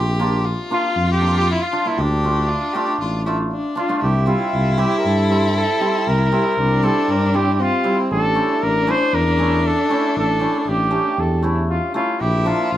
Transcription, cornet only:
0.73 1.07 F4 loud
1.11 1.34 G4 medium
1.37 1.48 G4 loud
1.51 1.64 E4 medium
1.62 1.89 F4 medium
1.88 2.03 E4 medium
2.01 3.53 D4 medium
3.78 4.01 F4 medium
4.02 4.28 G4 medium
4.27 4.80 F4 medium
4.78 5.00 G4 medium
4.98 5.08 A#4 medium
5.07 5.56 A4 medium
5.56 6.09 A4 medium
6.08 6.86 A#4 loud
6.84 7.12 A4 medium
7.10 7.37 A#4 medium
7.36 7.54 G4 medium
7.54 7.63 G4 medium
7.62 7.99 F4 loud
8.12 8.64 A4 loud
8.63 8.92 A#4 loud
8.90 9.16 C5 loud
9.15 9.68 A#4 loud
9.67 10.17 A4 medium
10.18 10.58 A4 medium
10.60 10.70 A4 medium
10.68 11.21 G4 medium
11.20 11.45 A4 medium
11.70 11.93 F4 medium
11.95 12.22 F4 medium
12.21 12.49 G4 medium
12.47 12.77 F4 medium

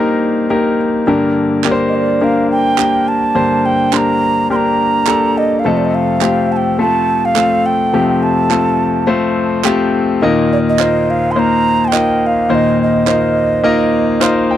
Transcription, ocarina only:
1.88 1.97 D#5 medium
1.95 2.25 D5 medium
2.24 2.51 F5 medium
2.51 3.10 G5 loud
3.08 3.67 A5 loud
3.66 3.95 G5 medium
3.94 3.99 C6 medium
3.98 4.51 A#5 loud
4.51 4.57 C6 loud
4.56 5.39 A#5 loud
5.38 5.61 D#5 loud
5.59 5.69 F5 medium
5.68 5.79 D#5 medium
5.77 5.87 D5 medium
5.85 5.96 D#5 medium
5.95 6.54 F5 medium
6.52 6.58 A5 medium
6.57 6.80 G5 medium
6.80 7.27 A5 loud
7.25 7.67 F5 medium
7.66 8.24 G5 loud
8.23 9.08 A5 medium
10.53 10.59 D5 medium
10.69 11.12 D#5 medium
11.10 11.33 F5 loud
11.32 11.41 C6 medium
11.39 11.86 A#5 loud
11.85 12.28 G5 loud
11.85 11.89 A5 medium
12.27 12.56 F5 medium
12.55 12.81 D#5 loud
12.83 14.48 D#5 medium

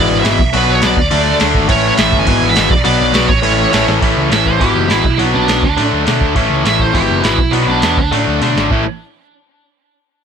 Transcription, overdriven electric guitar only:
0.00 0.24 E2 loud
0.00 0.23 B2 loud
0.00 0.23 E3 loud
0.24 0.39 E2 medium
0.24 0.39 B2 medium
0.24 0.38 E3 medium
0.53 0.81 B2 loud
0.53 0.81 F#3 loud
0.53 0.80 B3 loud
0.82 0.97 B2 medium
0.82 0.96 F#3 medium
0.82 0.96 B3 loud
1.11 1.40 D3 loud
1.11 1.40 A3 loud
1.11 1.39 D4 loud
1.40 1.68 D3 medium
1.40 1.68 A3 medium
1.40 1.69 D4 medium
1.68 1.97 A2 loud
1.68 1.98 E3 loud
1.68 1.97 A3 loud
1.98 2.26 A2 medium
1.98 2.27 E3 loud
1.98 2.27 A3 medium
2.27 2.56 E2 loud
2.27 2.56 B2 loud
2.27 2.55 E3 loud
2.56 2.71 E2 medium
2.56 2.71 B2 medium
2.56 2.70 E3 medium
2.84 3.13 B2 loud
2.84 3.13 F#3 loud
2.84 3.12 B3 loud
3.13 3.28 B2 medium
3.13 3.28 F#3 medium
3.13 3.28 B3 medium
3.42 3.72 A2 medium
3.42 3.72 E3 medium
3.42 3.71 A3 loud
3.72 4.00 A2 medium
3.72 4.01 E3 medium
3.72 4.01 A3 medium
4.01 4.29 A2 medium
4.01 4.29 E3 loud
4.01 4.29 A3 loud
4.30 4.59 A2 medium
4.30 4.59 E3 medium
4.30 4.59 A3 medium
4.60 4.88 E2 medium
4.60 4.88 B2 medium
4.60 4.88 E3 loud
4.89 5.04 E2 medium
4.89 5.03 B2 medium
4.89 5.03 E3 medium
5.18 5.47 B2 loud
5.18 5.47 F#3 medium
5.18 5.46 B3 loud
5.47 5.62 B2 medium
5.47 5.62 F#3 medium
5.47 5.61 B3 medium
5.77 6.06 D3 loud
5.77 6.06 A3 loud
5.77 6.05 D4 loud
6.06 6.35 D3 medium
6.06 6.35 A3 medium
6.06 6.35 D4 medium
6.36 6.64 A2 loud
6.36 6.64 E3 loud
6.36 6.64 A3 loud
6.65 6.93 A2 medium
6.65 6.93 E3 medium
6.65 6.94 A3 medium
6.93 7.22 E2 medium
6.93 7.22 B2 medium
6.93 7.21 E3 medium
7.22 7.38 E2 medium
7.22 7.37 B2 medium
7.22 7.37 E3 medium
7.53 7.83 B2 medium
7.53 7.83 F#3 loud
7.53 7.81 B3 loud
7.83 7.98 B2 medium
7.83 7.97 F#3 medium
7.83 7.97 B3 medium
8.12 8.41 D3 medium
8.12 8.41 A3 loud
8.12 8.40 D4 medium
8.42 8.71 D3 medium
8.42 8.70 A3 medium
8.42 8.70 D4 medium
8.71 8.83 A2 medium
8.71 8.83 E3 medium
8.71 8.84 A3 loud

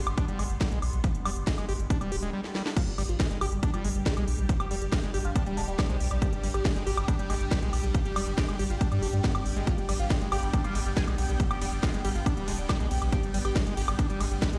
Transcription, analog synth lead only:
2.77 2.82 F4 loud
2.87 2.92 G3 medium
2.98 3.03 G3 medium
3.09 3.14 F4 loud
3.20 3.25 G3 medium
3.31 3.35 G3 medium
3.41 3.46 G4 loud
3.52 3.57 G3 medium
3.63 3.68 G3 medium
3.74 3.79 F4 medium
3.84 3.89 G3 medium
3.95 4.00 G3 medium
4.06 4.11 G#4 medium
4.17 4.22 G3 medium
4.38 4.43 G3 medium
4.49 4.54 G3 medium
4.60 4.65 G4 loud
4.71 4.76 G3 medium
4.82 4.87 G3 medium
4.92 4.97 F4 medium
5.03 5.08 G3 medium
5.14 5.19 G3 medium
5.25 5.30 F4 loud
5.36 5.41 G3 medium
5.46 5.51 G3 medium
5.57 5.62 D4 loud
5.68 5.73 G3 medium
5.79 5.84 G3 medium
5.89 5.94 C4 loud
6.00 6.05 G3 medium
6.11 6.16 G3 medium
6.22 6.27 G4 loud
6.33 6.38 G3 medium
6.43 6.48 G3 medium
6.54 6.59 G4 medium
6.65 6.70 G3 medium
6.76 6.81 G3 medium
6.87 6.92 G4 loud
6.97 7.02 G3 medium
7.08 7.13 G3 medium
7.19 7.24 G4 loud
7.30 7.35 G3 medium
7.41 7.46 G3 medium
7.51 7.56 B4 medium
7.62 7.67 G3 medium
7.84 7.89 G3 medium
7.95 8.00 G3 medium
8.05 8.10 G4 loud
8.16 8.21 G3 medium
8.27 8.32 G3 medium
8.38 8.43 G4 loud
8.49 8.53 G3 medium
8.59 8.64 G3 medium
8.70 8.75 F4 medium
8.81 8.86 G3 medium
8.92 8.97 G3 medium
9.02 9.07 D4 loud
9.13 9.18 G3 medium
9.24 9.29 G3 medium
9.35 9.40 C4 medium
9.46 9.51 G3 medium
9.56 9.61 G3 medium
9.67 9.72 F4 loud
9.78 9.83 G3 medium
9.89 9.94 G3 medium
10.00 10.05 F4 loud
10.10 10.15 G3 medium
10.21 10.26 G3 medium
10.32 10.37 G4 medium
10.43 10.48 G3 medium
10.54 10.59 G3 medium
10.64 10.69 F4 loud
10.75 10.80 G3 medium
10.86 10.91 G3 medium
10.97 11.02 G#4 medium
11.08 11.12 G3 medium
11.29 11.34 G3 medium
11.40 11.45 G3 medium
11.51 11.56 G4 loud
11.61 11.66 G3 medium
11.72 11.77 G3 medium
11.83 11.88 F4 loud
11.94 11.99 G3 medium
12.05 12.10 G3 medium
12.15 12.20 F4 medium
12.26 12.31 G3 medium
12.37 12.42 G3 medium
12.48 12.53 D4 loud
12.59 12.64 G3 medium
12.69 12.74 G3 medium
12.80 12.85 C4 loud
12.91 12.96 G3 medium
13.02 13.07 G3 medium
13.12 13.17 G4 loud
13.23 13.28 G3 medium
13.34 13.39 G3 medium
13.45 13.50 G4 medium
13.56 13.61 G3 medium
13.66 13.71 G3 medium
13.77 13.82 G4 loud
13.88 13.93 G3 medium
13.99 14.04 G3 medium
14.10 14.15 G4 loud
14.20 14.25 G3 medium
14.31 14.36 G3 medium
14.42 14.47 B4 medium
14.53 14.58 G3 medium

